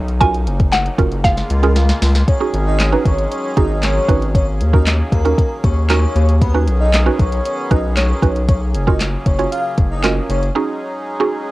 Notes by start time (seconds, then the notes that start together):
Already playing: B1 D#3 F#3 B3 C#4 D#4
0.08 closed hi-hat
0.21 A#3 C#4 F4 F#4 A#4 G#5, kick, closed hi-hat
0.35 closed hi-hat
0.47 F#1, closed hi-hat
0.60 kick, closed hi-hat
0.72 F#5, snare, clap, closed hi-hat
0.86 closed hi-hat
0.98 F#1 C#4 F4 F#4 A#4, kick, closed hi-hat
1.11 F#1, closed hi-hat
1.24 C#3 G#3 F4 F5, kick, snare, closed hi-hat
1.37 snare, closed hi-hat
1.50 C#2, closed hi-hat
1.63 C#4 F4 G#4 A#4, closed hi-hat
1.76 snare, closed hi-hat
1.89 snare, closed hi-hat
2.02 C#2, snare, open hi-hat
2.15 snare, closed hi-hat
2.27 D#3 F#3 G#3 C#4 G#4 C#5, kick, closed hi-hat
2.40 C#4 D#4 F#4 G#4
2.53 G#1, closed hi-hat
2.67 D#5
2.79 snare, clap, closed hi-hat
2.92 C#4 D#4 F#4 B4
3.05 G#1 C#5, kick, closed hi-hat
3.18 closed hi-hat
3.31 C#5, closed hi-hat
3.57 G#1 C#4 D#4 F#4 G#4 D#5, kick, closed hi-hat
3.83 C#5, snare, clap, closed hi-hat
4.08 G#1 C#4 D#4 F#4 B4, kick, closed hi-hat
4.22 closed hi-hat
4.35 A#3 C#5, kick, closed hi-hat
4.60 D#2, closed hi-hat
4.73 C#4 D#4 F#4 A#4 D#5, kick
4.87 snare, clap, closed hi-hat
5.12 D#2 A#4, kick, closed hi-hat
5.25 C#4 D#4 F#4 A#4, closed hi-hat
5.38 kick, closed hi-hat
5.64 D#2 C#5, kick, closed hi-hat
5.90 C#4 D#4 F#4 A#4 C#5, snare, clap, closed hi-hat
6.16 D#2, closed hi-hat
6.29 closed hi-hat
6.42 D#3 B3 B4, kick, closed hi-hat
6.54 C#4 D#4 F#4 B4
6.67 B1, closed hi-hat
6.81 D#5
6.93 snare, clap, closed hi-hat
7.06 C#4 D#4 F#4 B4
7.19 B1 C#5, kick, closed hi-hat
7.32 closed hi-hat
7.45 C#5, closed hi-hat
7.71 B1 C#4 D#4 F#4 B4 D#5, kick, closed hi-hat
7.97 C#5, snare, clap, closed hi-hat
8.22 B1 C#4 D#4 F#4 B4, kick, closed hi-hat
8.36 closed hi-hat
8.48 C#3 A#3 C#5, kick, closed hi-hat
8.74 F#1, closed hi-hat
8.87 C#4 F4 F#4 A#4 D#5, kick
9.00 snare, clap, closed hi-hat
9.26 F#1 C#5, kick, closed hi-hat
9.39 C#4 F4 F#4 C#5, closed hi-hat
9.52 F5, closed hi-hat
9.78 F#1, kick, closed hi-hat
9.91 D#5
10.03 C#4 F4 F#4 A#4, snare, clap, closed hi-hat
10.29 F#1 C#5, closed hi-hat
10.43 closed hi-hat
10.55 F#3 G#3 C#4 D#4 F#4 G#4
11.20 C#4 D#4 F#4 G#4